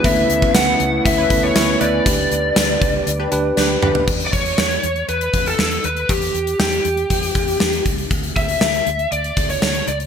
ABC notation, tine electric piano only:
X:1
M:4/4
L:1/8
Q:1/4=119
K:Edor
V:1 name="Tine electric piano"
[A,B,=C^CEB]3 z2 [A,B,CEB]2 z | [DGB]3 z2 [DGB]2 z | z8 | z8 |
z8 |]